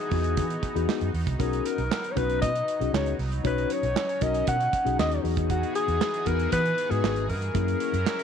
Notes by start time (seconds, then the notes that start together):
Already playing: E3 B3 D#4 F#4 G#4
0.11 E2 B3 D#4 F#4 G#4, kick, open hi-hat
0.24 closed hi-hat
0.37 E3, kick, closed hi-hat
0.50 closed hi-hat
0.63 kick, closed hi-hat
0.75 E2 B3 D#4 F#4 G#4, closed hi-hat
0.89 snare, clap
1.01 F#2, closed hi-hat
1.14 E2, open hi-hat
1.27 C2, kick, closed hi-hat
1.39 B1 F#3 C#4 D#4 F#4 G#4 A#4, kick, closed hi-hat
1.53 closed hi-hat
1.66 A#4, closed hi-hat
1.78 B1, closed hi-hat
1.91 snare, clap
2.04 closed hi-hat
2.12 C#5
2.16 B1 C#4 D#4 F#4 B4, kick, closed hi-hat
2.30 closed hi-hat
2.42 B2 D#5, kick, closed hi-hat
2.56 closed hi-hat
2.68 closed hi-hat
2.80 B1 C#4 D#4 F#4 G#4, closed hi-hat
2.93 C#2 C#5, snare, clap
3.06 closed hi-hat
3.19 C2, open hi-hat
3.32 closed hi-hat
3.44 B1 C#4 D#4 F#4 B4 C#5, kick, closed hi-hat
3.58 closed hi-hat
3.70 C#5, closed hi-hat
3.83 B1, closed hi-hat
3.96 snare, clap
4.09 closed hi-hat
4.21 B1 C#4 D#4 F#4 A#4 D#5, kick, closed hi-hat
4.34 closed hi-hat
4.47 B2 F#5, kick, closed hi-hat
4.60 closed hi-hat
4.73 kick, closed hi-hat
4.85 B1 C#4 D#4 F#4 G#4, closed hi-hat
4.99 D#2 D#5, snare, clap
5.12 closed hi-hat
5.23 E2 E3 B3 D#4 F#4 G#4, open hi-hat
5.37 kick, closed hi-hat
5.50 F#4, kick, closed hi-hat
5.63 closed hi-hat
5.75 G#4, closed hi-hat
5.88 E2, closed hi-hat
6.01 snare, clap
6.14 closed hi-hat
6.26 E2 B3 D#4 F#4 G#4 A#4, kick, closed hi-hat
6.39 closed hi-hat
6.52 E3 B4, kick, closed hi-hat
6.66 closed hi-hat
6.78 closed hi-hat
6.90 G#2 B3 D#4 F#4 G#4 B4, closed hi-hat
7.03 G#1, snare, clap
7.16 closed hi-hat
7.29 G2 A#4, open hi-hat
7.42 closed hi-hat
7.54 F#2 F#3 A#3 C#4 E4 G#4 A#4, kick, closed hi-hat
7.68 closed hi-hat
7.80 closed hi-hat
7.93 F#2, closed hi-hat
8.06 snare, clap
8.19 closed hi-hat